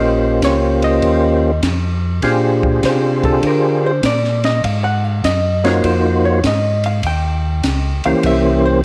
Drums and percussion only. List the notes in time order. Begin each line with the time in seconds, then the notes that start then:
0.42 kick, snare, hi-hat pedal, ride
0.82 ride
1.02 kick, ride
1.63 kick, snare, hi-hat pedal, ride
2.22 kick, snare, ride
2.63 kick
2.83 kick, snare, hi-hat pedal, ride
3.24 kick, ride
3.43 kick, ride
4.03 kick, snare, hi-hat pedal, ride
4.24 snare
4.44 snare, ride
4.64 kick, ride
5.24 kick, snare, hi-hat pedal, ride
5.65 snare, ride
5.84 kick, ride
6.44 kick, snare, hi-hat pedal, ride
6.84 ride
7.03 kick, ride
7.63 kick, snare, hi-hat pedal, ride
8.04 ride
8.23 kick, ride